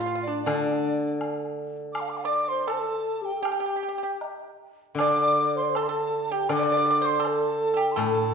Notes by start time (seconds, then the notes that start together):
Already playing: A2 F4 F5
0.01 F4
0.06 F4
0.15 F4
0.22 D5
0.27 D4
0.42 D5
0.46 D3 D4, high woodblock
1.21 high woodblock
1.93 D6, high woodblock
2.00 F5
2.09 D6
2.17 F5
2.24 D5 D6
2.48 C5 C6
2.67 A4 A5, high woodblock
2.73 C5
2.79 A4
3.22 G4 G5
3.35 A4
3.41 G4
3.45 G5, high woodblock
3.52 G4
3.60 G4
3.66 G4
3.76 G4
3.83 G4
3.88 G4
3.98 G4
4.03 G4
4.21 low woodblock
4.95 D3 D5 D6, high woodblock
5.00 D5
5.56 C5 C6
5.63 D5
5.69 C5
5.75 A4 A5, high woodblock
5.83 C6
5.88 A4 A5
6.27 A4 G5
6.31 G4
6.49 D3 D5 D6, high woodblock
6.59 D5
6.72 D5
6.77 D5
6.86 D5
6.90 D5
7.01 C5
7.06 C6
7.17 A4 C6
7.24 A4 A5, high woodblock
7.74 G4 A4
7.81 G5
7.91 C6
7.96 A2 A4 A5, high woodblock
8.31 G4